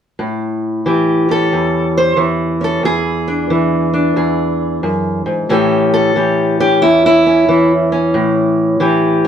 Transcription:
0.19 A2
0.86 E3 G4
1.29 C#4 A4
1.52 E2
1.97 C5
2.17 E3
2.61 C#4 A4
2.83 E2 G#4
3.28 D4
3.50 E3
3.94 D4
4.16 E2 G#4
4.83 F#2
5.26 G#2
5.49 A2 E3 C#4 G4 A4
5.94 A4
6.16 E3 G4
6.60 C#4 G4
6.82 E2 E4
7.06 E4
7.27 C#4
7.49 E3
7.92 C#4
8.14 A2
8.80 E3 G4

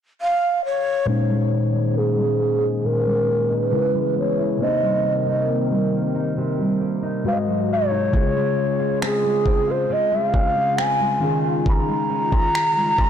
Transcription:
0.21 F5
0.65 C#5
1.06 A#2 D#3 G#3 A#3 C#4 D#4 G#4 C5
1.29 G#3
1.51 C#4
1.73 D#4
1.96 C#4 G#4
2.18 G#3
2.40 C#4
2.62 D#4
2.84 A#2 A#4
3.06 G#3
3.28 C#4
3.50 D#4 B4
3.72 C#3 E3 G#3 E4 A#4 B4
3.80 B4
3.94 G#3
4.16 B3 C#5
4.38 E4
4.59 C3 D#3 A#3 C4 D4 A#4
4.63 C5 D#5
4.68 D#4
4.82 G3
5.04 A#3
5.26 D#4
5.49 A#3
5.71 G3
5.92 A#3
6.15 D#4
6.37 C3
6.59 G3
6.81 A#3
7.03 D#4
7.24 G#2 C3 G#3 F#4 B4 F5
7.33 D#5
7.47 F#3
7.72 C#5
7.91 D#4
8.11 C#3 G#3 F4, kick
8.15 G#4
8.36 G#3
8.79 F4
9.01 C4 G#4, finger snap
9.24 G#3
9.46 C4, kick
9.68 F4 C5
9.90 C#3 D#5
10.12 G#3 E5
10.26 F5
10.34 C4, kick
10.56 F4
10.78 C4 G#5, finger snap
11.00 G#3
11.20 D#3 G#3 C#4 D#4 F4
11.24 G#4
11.44 F4
11.66 D#3 B5, kick
11.72 A#5
11.88 G#3
12.10 C#4
12.32 F4, kick
12.54 C#4, finger snap
12.76 G#3
12.98 C#4, kick

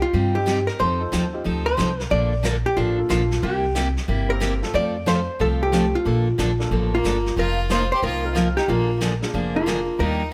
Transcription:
0.02 F4
0.13 G2 C3 G3 C4 D#4 G4, brush sweep
0.35 G3 C4 D#4 G4
0.46 C3 G3 C4 D#4 G4, snare, hi-hat pedal
0.67 A#4, snare
0.79 F2 F3 C4 D#4 A4 C5, brush sweep
1.00 C4 D#4 F4 A4
1.12 D#2 F3 C4 D#4 A4, snare, hi-hat pedal
1.33 C4 D#4 F4 G4
1.44 D2 F3 C4 D#4 A4, brush sweep
1.66 C5
1.77 C2 F3 C4 D#4 A4, snare, hi-hat pedal
2.00 snare
2.10 A#1 D3 F3 A#3 D4 A4 D5, brush sweep
2.43 D3 F3 A#3 D4 A4 A#4, snare, hi-hat pedal
2.66 G4
2.77 A1 D3 F3 A#3 D4 F4 A4, brush sweep
2.97 A#3 D4 F4 A4
3.09 A#1 D3 F3 A#3 D4 F4 A4, snare, hi-hat pedal
3.31 snare
3.42 C2 C3 G3 A#3 E4 G4, brush sweep
3.75 C3 G3 A#3 E4 G4, snare, hi-hat pedal
3.97 snare
4.08 G1 C3 G3 A#3 E4 G4, brush sweep
4.29 A#3 C4 E4 G4 A#4
4.40 C3 G3 A#3 E4 G4, snare, hi-hat pedal
4.62 A3 C4 F4 A4, snare
4.74 F2 F3 A3 C4 F4 A4 D5, brush sweep
5.06 F3 A3 C4 F4 A4 C5, snare, hi-hat pedal
5.39 C2 F3 A3 C4 F4 A4, brush sweep
5.61 A3 C4 F4 G4 A4
5.72 F3 A3 C4 F4 A4, snare, hi-hat pedal
5.95 F4
6.05 A#1 D3 F3 A#3 D4 F4 A4, brush sweep
6.38 A#1 D3 F3 A#3 D4 A4, snare, hi-hat pedal
6.59 A#3 D4 F4 A4, snare
6.71 A1 D3 F3 A#3 D4 A4, brush sweep
6.94 A#3 F4
7.04 G1 D3 F3 A#3 D4 A4, snare, hi-hat pedal
7.26 snare
7.37 F1 F3 A#3 D#4 F4 A#4, brush sweep
7.70 F3 A#3 D#4 F4 A#4 C5, snare, hi-hat pedal
7.92 G4 C5
8.02 C2 F3 A#3 D#4 F4 A#4, brush sweep
8.24 C4 D#4 F4 A#4
8.35 F3 A#3 D#4 F4 A#4, snare, hi-hat pedal
8.57 D#4 G4, snare
8.68 A#1 D3 F3 A#3 D4 F4 G#4, brush sweep
9.01 D3 F3 A#3 D4 G#4, snare, hi-hat pedal
9.22 A#3 D4 F4 G#4, snare
9.34 F1 D3 F3 A#3 D4 G#4, brush sweep
9.55 A#3 D4 F4 G#4
9.66 D3 F3 A#3 D4 G#4, snare, hi-hat pedal
9.99 D#2 D#3 G3 A#3 D4 D#4 G4 A#4, brush sweep

